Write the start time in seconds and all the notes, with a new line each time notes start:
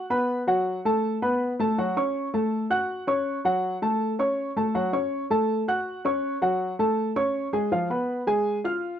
0.10 B3 B4 B5
0.47 F#3 F#4 F#5
0.85 A3 A4 A5
1.22 B3 B4 B5
1.59 A3 A4 A5
1.78 F#3 F#4 F#5
1.97 C#4 C#5 C#6
2.34 A3 A4 A5
2.70 F#4 F#5 F#6
3.07 C#4 C#5 C#6
3.45 F#3 F#4 F#5
3.82 A3 A4 A5
4.19 C#4 C#5 C#6
4.56 A3 A4 A5
4.75 F#3 F#4 F#5
4.93 C#4 C#5 C#6
5.30 A3 A4 A5
5.68 F#4 F#5 F#6
6.05 C#4 C#5 C#6
6.42 F#3 F#4 F#5
6.79 A3 A4 A5
7.16 C#4 C#5 C#6
7.53 G#3 G#4 G#5
7.72 F3 F4 F5
7.90 B3 B4 B5
8.27 G#3 G#4 G#5
8.64 F4 F5 F6